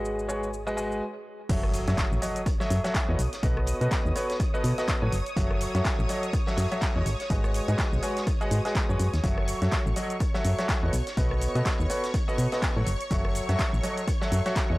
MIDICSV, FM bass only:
0, 0, Header, 1, 2, 480
1, 0, Start_track
1, 0, Tempo, 483871
1, 1483, Time_signature, 4, 2, 24, 8
1, 14663, End_track
2, 0, Start_track
2, 0, Title_t, "FM bass"
2, 0, Program_c, 0, 39
2, 0, Note_on_c, 0, 32, 86
2, 1003, Note_off_c, 0, 32, 0
2, 1482, Note_on_c, 0, 30, 94
2, 1786, Note_off_c, 0, 30, 0
2, 1862, Note_on_c, 0, 42, 96
2, 1929, Note_off_c, 0, 42, 0
2, 2101, Note_on_c, 0, 33, 101
2, 2168, Note_off_c, 0, 33, 0
2, 2683, Note_on_c, 0, 42, 93
2, 2774, Note_off_c, 0, 42, 0
2, 3062, Note_on_c, 0, 40, 105
2, 3128, Note_off_c, 0, 40, 0
2, 3163, Note_on_c, 0, 35, 90
2, 3254, Note_off_c, 0, 35, 0
2, 3402, Note_on_c, 0, 35, 102
2, 3706, Note_off_c, 0, 35, 0
2, 3781, Note_on_c, 0, 47, 97
2, 3848, Note_off_c, 0, 47, 0
2, 4021, Note_on_c, 0, 39, 107
2, 4088, Note_off_c, 0, 39, 0
2, 4603, Note_on_c, 0, 47, 90
2, 4694, Note_off_c, 0, 47, 0
2, 4982, Note_on_c, 0, 45, 104
2, 5048, Note_off_c, 0, 45, 0
2, 5083, Note_on_c, 0, 30, 88
2, 5174, Note_off_c, 0, 30, 0
2, 5323, Note_on_c, 0, 30, 103
2, 5626, Note_off_c, 0, 30, 0
2, 5702, Note_on_c, 0, 42, 91
2, 5768, Note_off_c, 0, 42, 0
2, 5941, Note_on_c, 0, 33, 102
2, 6008, Note_off_c, 0, 33, 0
2, 6522, Note_on_c, 0, 42, 90
2, 6614, Note_off_c, 0, 42, 0
2, 6901, Note_on_c, 0, 40, 99
2, 6968, Note_off_c, 0, 40, 0
2, 7003, Note_on_c, 0, 32, 93
2, 7095, Note_off_c, 0, 32, 0
2, 7242, Note_on_c, 0, 32, 98
2, 7546, Note_off_c, 0, 32, 0
2, 7621, Note_on_c, 0, 44, 96
2, 7688, Note_off_c, 0, 44, 0
2, 7861, Note_on_c, 0, 35, 100
2, 7928, Note_off_c, 0, 35, 0
2, 8443, Note_on_c, 0, 44, 89
2, 8534, Note_off_c, 0, 44, 0
2, 8821, Note_on_c, 0, 42, 93
2, 8888, Note_off_c, 0, 42, 0
2, 8923, Note_on_c, 0, 42, 93
2, 9015, Note_off_c, 0, 42, 0
2, 9062, Note_on_c, 0, 39, 87
2, 9129, Note_off_c, 0, 39, 0
2, 9162, Note_on_c, 0, 30, 100
2, 9466, Note_off_c, 0, 30, 0
2, 9542, Note_on_c, 0, 42, 94
2, 9609, Note_off_c, 0, 42, 0
2, 9782, Note_on_c, 0, 33, 105
2, 9849, Note_off_c, 0, 33, 0
2, 10365, Note_on_c, 0, 42, 91
2, 10455, Note_off_c, 0, 42, 0
2, 10743, Note_on_c, 0, 40, 97
2, 10809, Note_off_c, 0, 40, 0
2, 10843, Note_on_c, 0, 35, 84
2, 10935, Note_off_c, 0, 35, 0
2, 11083, Note_on_c, 0, 35, 104
2, 11386, Note_off_c, 0, 35, 0
2, 11461, Note_on_c, 0, 47, 90
2, 11528, Note_off_c, 0, 47, 0
2, 11701, Note_on_c, 0, 39, 103
2, 11768, Note_off_c, 0, 39, 0
2, 12283, Note_on_c, 0, 47, 92
2, 12374, Note_off_c, 0, 47, 0
2, 12661, Note_on_c, 0, 45, 103
2, 12728, Note_off_c, 0, 45, 0
2, 12762, Note_on_c, 0, 30, 89
2, 12854, Note_off_c, 0, 30, 0
2, 13003, Note_on_c, 0, 30, 100
2, 13306, Note_off_c, 0, 30, 0
2, 13382, Note_on_c, 0, 42, 94
2, 13448, Note_off_c, 0, 42, 0
2, 13621, Note_on_c, 0, 33, 103
2, 13688, Note_off_c, 0, 33, 0
2, 14203, Note_on_c, 0, 42, 97
2, 14294, Note_off_c, 0, 42, 0
2, 14581, Note_on_c, 0, 40, 99
2, 14648, Note_off_c, 0, 40, 0
2, 14663, End_track
0, 0, End_of_file